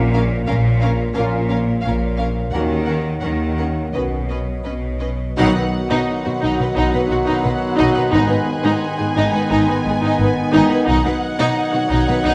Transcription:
Already playing: A#1 A#2 A#4 C#5 F5
0.14 C#4 A#4 F5
0.47 A#1 A#2 C#4 A#4 F5
0.81 C#4 A#4 F5
1.14 A#1 A#2 A#3 C#4 A#4 F5
1.19 C#4 F4
1.48 C#4 A#4 F5
1.82 A#1 A#2 C#4 F5
1.86 A#4
2.17 C#4 A#4 F5
2.50 D#2 A#2 D#3 A#3 C#4 A#4 F#5
2.54 C#4 F#4
2.85 C#4 A#4 F#5
3.20 D#2 D#3 C#4 A#4 F#5
3.57 C#4 A#4 F#5
3.93 B1 B2 D#3 B3 C#4 F#4 B4 D#5
4.29 C#4 B4 D#5
4.64 B1 B2 C#4 B4 D#5
4.99 C#4 B4 D#5
5.37 B1 B2 D#3 F#3 B3 D#4 F#4 D#5 F#5 B5
5.55 B2 D#4 B4
5.90 B2 D#4
6.09 C6
6.23 B2 D#4 F#4
6.40 B1 B2 D#4
6.57 B2 D#4
6.61 B4
6.74 B1 B2 D#4 F#6
6.90 B2 D#4
6.94 B4
7.07 D#4
7.11 B1 B2 F#4
7.23 D#4
7.28 B2
7.41 D#4 B4
7.45 B1 B2
7.75 D#4
7.79 B1 B2
7.93 B2 D#4 B4
8.10 G#2 G#3 D#4 G#5
8.14 G#1 G#5
8.27 G#2 D#4 B4
8.63 G#2 D#4
8.97 G#2 D#4 G#4
9.15 G#1 G#2 D#4
9.32 G#2 D#4 B4
9.49 G#1 G#2 D#4
9.67 G#2 D#4 B4
9.84 G#1 G#2 D#4 G#4
10.01 G#2 D#4
10.19 G#1 G#2 D#4 B4
10.52 G#1 G#2 D#4
10.69 G#2 D#4 B4
10.84 B1 B3 D#4 F#5 F#6 G#6
10.89 B2 D#3 F#3 D#4 B4 D#5 F#5
11.04 B2 D#4 B4
11.39 B2 D#4
11.71 B2 D#4 F#4
11.88 B1 B2 D#4
12.07 B2 D#4 B4
12.23 B1 B2 D#4 B6

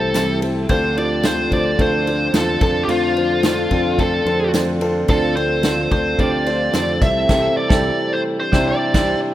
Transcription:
Already playing: C2 C3 E3 G3 A3 C4 E4 G4 A4 C5
0.14 C3 E3 G3 C4 E4 G4 A4 C5, snare, ride, tambourine
0.42 G3 C4 E4 G4 A4, ride
0.69 D2 D3 F3 A3 C4 D4 F4 A4 C5, kick, ride
0.96 C4 D4 F4 G4 C5 D5, ride
1.23 D3 A3 C4 D4 F4 A4 C5, snare, ride, tambourine
1.51 D2 C4 D4 F4 C5 D5, kick, ride
1.78 D2 A3 C4 D4 F4 A4 C5, kick, ride
2.05 C4 D4 F4 A4 C5, ride
2.33 E2 D3 A3 C4 D4 F4 A4 C5, snare, ride, tambourine
2.61 F2 D3 C4 D4 F4 A4 C5, kick, ride
2.83 G4
2.88 F2 F3 A3 D4 F4 A4 C5, ride
3.16 C4 D4 F4 A4 C5, ride
3.43 F3 A3 C4 D4 F4 A4 C5, snare, ride, tambourine
3.71 F2 C4 D4 F4 A4 C5, kick, ride
3.99 A3 C4 D4 F4 A4 C5, kick, ride
4.25 F2 C4 D4 F4 A4 C5, ride
4.54 F3 A3 C4 D4 F4 A4 C5, snare, ride, tambourine
4.81 C4 D4 F4 A4 C5, ride
5.08 D2 D3 A3 C4 D4 F4 A4 C5, kick, ride
5.36 C4 D4 F4 C5, ride
5.63 D3 A3 C4 D4 F4 A4 C5, snare, ride, tambourine
5.91 D2 C4 D4 F4 A4 C5, kick, ride
6.19 D2 A3 C4 D4 F4 G4 C5 D5, kick, ride
6.46 C4 D4 F4 C5, ride
6.73 F2 D3 A3 C4 D4 F4 A4 C5, snare, ride, tambourine
7.01 C2 C3 E3 G3 A3 C4 E4 G4 A4 E5, kick, snare, ride
7.29 C2 C3 E3 G3 C4 E4 G4 A4, kick, snare, crash
7.57 D5
7.70 C2 G3 C4 E4 G4 A4, kick, snare
8.13 C5
8.40 D4 C5
8.52 C2 C3 G3 D4 E4 G4 C5, kick, snare
8.68 D5
8.94 C2 C3 E3 G3 D4 E4 G4 C5, kick, snare, crash

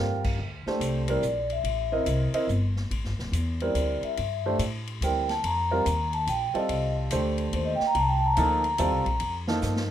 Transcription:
Already playing: G2 D3 G3 C4 F4 A#4 G5
0.24 kick, crash
0.39 D2
0.66 A3 D4 G4 C5, muted upright bass stroke, snare
0.79 C2, hi-hat pedal, ride
1.08 G3 C4 E4 A#4 D5, ride
1.22 A#1, hi-hat pedal
1.50 E5, ride
1.64 A1, ride
1.92 C4 E4 A#4 D#5
2.06 C2, hi-hat pedal, ride
2.33 C4 E4 A#4 D#5, muted upright bass stroke, ride
2.47 G1, hi-hat pedal
2.76 snare
2.91 A1, ride
3.05 G1, snare
3.19 D1, snare
3.32 E2, hi-hat pedal, ride
3.60 G3 C4 E4 A#4 D5, ride
3.75 D2, hi-hat pedal, ride
4.03 E5, muted upright bass stroke, ride
4.17 G2, ride
4.46 A3 D4 G4 C5
4.59 A2, hi-hat pedal, ride
4.87 ride
5.01 D2 G3 C4 E4 A#4 G5, hi-hat pedal, ride
5.29 A5, snare, ride
5.44 F2 A#5, ride
5.71 G3 C4 F4 A#4
5.86 D#2, hi-hat pedal, ride
6.13 A5, ride
6.27 A#1 G5, hi-hat pedal, ride
6.54 G3 C4 F4 A4 D#5, muted upright bass stroke, ride
6.69 C2, ride
7.11 D2 A3 D4 G4 C5, hi-hat pedal, ride
7.38 ride
7.53 D#2 C5, ride
7.65 D#5
7.75 G5
7.80 muted upright bass stroke, snare
7.87 A#5
7.95 C2 A5, ride
8.08 G5
8.18 A5
8.26 A#5
8.33 F3 A#5, hi-hat pedal, ride
8.37 D2 A#3 D#4 A4
8.64 ride
8.78 D#2 G3 C4 F4 A4, hi-hat pedal, ride
8.92 C2
9.06 A#1, kick, ride
9.20 F2, ride
9.48 F3 A#3 D#4 A4, snare
9.62 G2, snare, hi-hat pedal
9.76 snare

